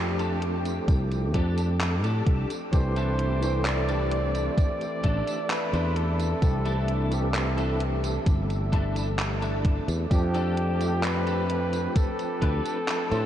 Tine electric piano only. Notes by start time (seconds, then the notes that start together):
Already playing: F3 A3 C4 D4 G4
2.72 E3 A3 C4 D4 G4
3.41 E3 A3 C4 D4 G4
6.41 E3 A3 C4 D4 G4
7.10 E3 A3 C4 D4 G4
10.10 F3 A3 C4 D4 G4
10.79 F3 A3 C4 D4 G4